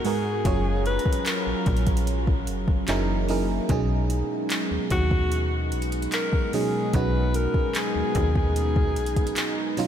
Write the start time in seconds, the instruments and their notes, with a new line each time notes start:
Already playing: analog synth pad G#3 B3 D#4 F#4
0.04 fm electric piano G#2 G#3 B3 F#4 A#4, alto saxophone G#4, open hi-hat
0.45 fm bass F#1, fm electric piano F#3 C#4 F4 G#4 C#5, analog synth pad F#3 C#4 F4 A#5, kick, closed hi-hat
0.86 alto saxophone B4, closed hi-hat
0.99 closed hi-hat
1.06 kick
1.13 closed hi-hat
1.26 alto saxophone A#4, clap, closed hi-hat
1.47 fm bass A#1
1.66 fm bass A#1, kick, closed hi-hat, open hi-hat
1.77 closed hi-hat
1.87 kick, closed hi-hat
1.97 closed hi-hat
2.07 closed hi-hat
2.27 kick
2.47 fm bass F#1, closed hi-hat
2.68 kick
2.88 fm bass F#1, analog synth pad E3 A#3, fm electric piano F#3 C#4 D#4 E4 G#4 A#4, clap, closed hi-hat
3.28 fm electric piano F#3 C#4 D#4 E4 G#4 A#4, open hi-hat
3.69 fm bass B1, fm electric piano B2 F#3 C#4 D#4 G#4, analog synth pad G#3 B3 D#4, kick, closed hi-hat
4.10 closed hi-hat
4.50 clap, closed hi-hat
4.71 fm bass D#2
4.90 fm bass D#2, alto saxophone F#4, kick, closed hi-hat
5.11 kick
5.32 closed hi-hat
5.72 fm bass B1, closed hi-hat
5.82 closed hi-hat
5.92 closed hi-hat
6.02 closed hi-hat
6.12 alto saxophone A#4, clap, closed hi-hat
6.33 kick
6.53 fm electric piano B2 F#3 C#4 D#4 G#4, alto saxophone G#4, open hi-hat
6.93 fm bass B1, fm electric piano B2 F#3 C#4 D#4 F#4, alto saxophone B4, kick, closed hi-hat
7.34 alto saxophone A#4, closed hi-hat
7.54 kick
7.75 alto saxophone G#4, clap, closed hi-hat
7.96 fm bass D#2
8.15 fm bass D#2, kick, closed hi-hat
8.36 alto saxophone G#4, kick
8.56 closed hi-hat
8.76 kick
8.96 fm bass B1, closed hi-hat
9.06 closed hi-hat
9.16 kick, closed hi-hat
9.27 closed hi-hat
9.36 clap, closed hi-hat
9.77 fm electric piano B2 F#3 C#4 D#4 F4, open hi-hat